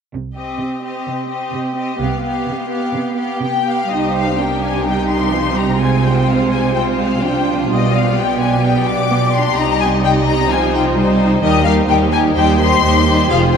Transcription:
0.12 0.52 C2 soft
0.12 0.52 C3 soft
0.36 0.82 C4 soft
0.36 0.82 G4 soft
0.36 0.82 D#5 soft
0.60 0.99 C3 soft
0.83 1.29 C4 soft
0.83 1.29 G4 soft
0.83 1.28 D#5 soft
1.06 1.46 C3 soft
1.30 1.75 C4 soft
1.30 1.75 G4 soft
1.30 1.75 D#5 soft
1.54 1.92 C3 soft
1.76 1.99 C4 soft
1.76 1.98 G4 soft
1.76 1.99 D#5 soft
1.99 2.39 C2 medium
1.99 2.39 C3 medium
1.99 2.21 B3 soft
1.99 2.22 G4 soft
1.99 2.23 F5 soft
2.23 2.68 B3 soft
2.23 2.69 G4 soft
2.23 2.69 F5 soft
2.46 2.86 C3 medium
2.69 3.15 B3 soft
2.69 3.16 G4 soft
2.69 3.16 F5 soft
2.94 3.33 C3 medium
3.16 3.64 B3 soft
3.16 3.65 G4 soft
3.16 3.41 F5 soft
3.41 3.83 C3 medium
3.41 3.76 G5 medium
3.65 3.90 B3 soft
3.65 3.90 G4 soft
3.65 3.78 F5 soft
3.79 3.91 F5 soft
3.90 7.65 C2 soft
3.90 7.66 C3 soft
3.90 4.82 G3 soft
3.90 4.35 D#4 soft
3.90 4.36 G4 soft
3.90 4.36 C5 soft
3.90 4.14 D#5 medium
4.15 4.38 F5 medium
4.39 4.85 D4 soft
4.39 5.78 G4 soft
4.39 5.33 A#4 soft
4.39 4.63 G5 medium
4.63 4.86 G#5 soft
4.86 5.32 G3 soft
4.86 5.80 D#4 soft
4.86 5.10 G5 medium
5.10 5.56 C6 medium
5.33 5.57 F3 soft
5.33 5.79 C5 soft
5.56 5.80 G3 soft
5.56 5.80 A#5 medium
5.80 6.26 G#3 soft
5.80 6.73 C4 soft
5.80 6.73 F4 soft
5.80 7.66 C5 soft
5.80 6.04 G#5 medium
6.04 6.28 G5 medium
6.27 7.21 G#3 soft
6.27 6.51 F5 medium
6.51 6.74 G#5 medium
6.75 7.21 C4 soft
6.75 7.22 F4 soft
6.75 6.83 G5 medium
6.99 7.22 F5 medium
7.23 7.70 F3 soft
7.23 7.70 D4 soft
7.23 8.15 F4 soft
7.23 7.58 G5 medium
7.60 7.71 F5 soft
7.69 9.57 B1 soft
7.69 9.57 B2 soft
7.69 8.16 G3 soft
7.69 8.16 B3 soft
7.69 8.62 D5 soft
7.69 7.93 D#5 medium
7.93 8.17 F5 medium
8.17 8.62 B3 soft
8.17 9.09 G4 soft
8.17 8.40 G5 medium
8.40 8.63 G#5 medium
8.63 9.09 B3 soft
8.63 9.55 D5 soft
8.63 8.87 G5 medium
8.86 9.33 D6 medium
9.10 9.18 B3 soft
9.10 10.02 G4 soft
9.33 9.56 D4 soft
9.33 9.57 C6 medium
9.56 11.39 C2 medium
9.56 11.39 C3 medium
9.56 10.49 G3 medium
9.56 10.02 D#4 medium
9.56 10.04 D#5 soft
9.56 9.80 A#5 medium
9.80 9.88 G#5 medium
10.04 10.95 D#4 medium
10.04 10.50 D#4 soft
10.04 10.51 D#5 soft
10.04 10.13 G5 medium
10.27 10.50 A#5 medium
10.51 10.96 F3 medium
10.51 10.97 F4 soft
10.51 10.96 C5 soft
10.51 10.74 G#5 medium
10.75 10.83 G5 medium
10.97 11.42 G3 medium
10.97 11.42 D#4 medium
10.97 11.43 D#4 medium
10.97 11.42 C5 medium
11.43 11.83 D#2 medium
11.43 11.64 G3 medium
11.43 11.65 D#4 medium
11.43 11.65 G4 medium
11.43 11.65 A#4 medium
11.43 11.64 D#5 medium
11.65 11.88 G3 soft
11.65 11.88 D#4 medium
11.65 11.88 G4 soft
11.65 11.87 A#4 soft
11.65 11.73 F5 medium
11.89 12.30 D#2 medium
11.89 12.11 G3 soft
11.89 12.11 D#4 soft
11.89 12.10 G4 soft
11.89 12.10 A#4 soft
11.89 11.97 G5 medium
12.12 12.35 G3 medium
12.12 12.35 D#4 soft
12.12 12.34 G4 soft
12.12 12.35 A#4 soft
12.12 12.20 G#5 medium
12.35 12.79 D#2 medium
12.35 12.59 G3 medium
12.35 12.59 D#4 soft
12.35 12.59 G4 soft
12.35 12.58 C5 soft
12.35 12.60 G5 medium
12.59 12.83 G3 soft
12.59 12.83 D#4 medium
12.59 12.83 G4 soft
12.59 12.83 C5 soft
12.59 13.29 C6 medium
12.84 13.25 D#2 medium
12.84 13.06 G3 soft
12.84 13.06 D#4 medium
12.84 13.05 G4 soft
12.84 13.06 C5 soft
13.07 13.30 G3 soft
13.07 13.30 D#4 soft
13.07 13.30 G4 medium
13.07 13.30 C5 soft
13.30 13.57 F1 medium
13.30 13.57 F2 medium
13.30 13.52 F3 medium
13.30 13.52 F4 medium
13.30 13.52 G#4 medium
13.30 13.53 C5 medium
13.30 13.38 F5 medium
13.54 13.57 F3 soft
13.54 13.57 F4 soft
13.54 13.57 G#4 soft
13.54 13.57 C5 soft
13.54 13.57 G5 medium

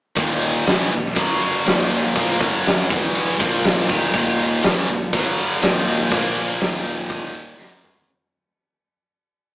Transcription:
0.16 0.63 D#1 loud
0.16 0.65 D#2 loud
0.16 0.66 A#2 loud
0.16 0.66 D#3 loud
0.16 kick loud
0.16 ride medium
0.42 ride medium
0.66 0.90 E1 medium
0.66 0.90 E2 medium
0.66 0.91 B2 loud
0.66 0.91 E3 loud
0.66 snare loud
0.66 ride medium
0.91 1.15 D#1 medium
0.91 1.11 D#2 medium
0.91 1.12 A#2 medium
0.91 ride medium
1.05 snare soft
1.16 1.62 F#1 medium
1.16 1.65 F#2 medium
1.16 1.65 C#3 medium
1.16 1.66 F#3 loud
1.16 kick loud
1.16 ride loud
1.42 ride medium
1.66 2.13 D#1 loud
1.66 2.15 D#2 medium
1.66 2.15 A#2 medium
1.66 2.16 D#3 loud
1.66 snare loud
1.66 ride loud
1.81 snare soft
1.92 ride medium
2.16 2.39 A#1 loud
2.16 2.40 A#2 loud
2.16 2.40 F3 loud
2.16 2.41 A#3 loud
2.16 kick loud
2.16 ride loud
2.40 2.87 F#1 loud
2.40 2.90 F#2 medium
2.40 2.90 C#3 loud
2.40 2.90 F#3 loud
2.40 kick loud
2.40 ride medium
2.66 snare loud
2.66 ride medium
2.90 3.36 E1 loud
2.90 3.39 E2 medium
2.90 3.39 B2 medium
2.90 3.40 E3 medium
2.90 kick loud
2.90 ride medium
3.15 ride loud
3.39 3.86 A#1 loud
3.39 3.89 A#2 medium
3.39 3.89 F3 loud
3.39 3.89 A#3 loud
3.39 kick loud
3.39 ride medium
3.64 snare loud
3.64 ride medium
3.78 snare soft
3.89 4.12 D#1 loud
3.89 4.14 D#2 medium
3.89 4.14 A#2 medium
3.89 4.14 D#3 loud
3.89 kick loud
3.89 crash medium
4.14 4.60 D#1 loud
4.14 4.63 D#2 medium
4.14 4.64 A#2 loud
4.14 4.64 D#3 loud
4.14 kick loud
4.39 ride medium
4.63 4.87 E1 medium
4.63 4.88 E2 loud
4.63 4.88 B2 medium
4.63 4.88 E3 loud
4.63 snare loud
4.63 ride medium
4.88 5.11 D#1 medium
4.88 5.09 D#2 medium
4.88 5.09 A#2 medium
4.88 ride medium
5.13 5.59 F#1 loud
5.13 5.62 F#2 loud
5.13 5.62 C#3 loud
5.13 5.62 F#3 loud
5.13 kick loud
5.13 ride loud
5.38 ride medium
5.62 6.08 D#1 loud
5.62 6.11 D#2 medium
5.62 6.11 A#2 loud
5.62 6.12 D#3 loud
5.62 snare loud
5.62 ride loud
5.87 ride medium
6.11 6.57 A#1 loud
6.11 6.60 A#2 loud
6.11 6.60 F3 loud
6.11 6.60 A#3 loud
6.11 kick loud
6.11 ride loud
6.37 ride medium
6.60 7.55 D#1 medium
6.60 7.59 D#2 medium
6.60 7.59 A#2 medium
6.60 7.59 D#3 loud
6.60 snare loud
6.60 ride loud
6.85 ride medium
7.10 kick loud
7.10 ride loud
7.35 ride medium
7.59 8.04 F#1 medium
7.59 8.07 F#2 medium
7.59 8.07 C#3 medium
7.59 8.08 F#3 loud
7.59 snare medium
7.84 mid tom medium
7.96 floor tom medium

